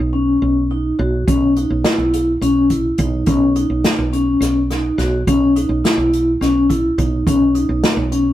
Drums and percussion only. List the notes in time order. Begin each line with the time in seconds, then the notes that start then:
1.28 kick, closed hi-hat
1.56 closed hi-hat
1.84 snare, closed hi-hat
2.14 closed hi-hat
2.42 closed hi-hat
2.70 kick, closed hi-hat
2.98 kick, closed hi-hat
3.26 kick, closed hi-hat
3.56 closed hi-hat
3.84 snare, closed hi-hat
4.13 closed hi-hat
4.42 snare, closed hi-hat
4.71 snare, closed hi-hat
4.99 snare, closed hi-hat
5.27 kick, closed hi-hat
5.56 closed hi-hat
5.85 snare, closed hi-hat
6.13 closed hi-hat
6.42 snare, closed hi-hat
6.70 kick, closed hi-hat
6.98 kick, closed hi-hat
7.27 kick, closed hi-hat
7.55 closed hi-hat
7.84 snare, closed hi-hat
8.12 closed hi-hat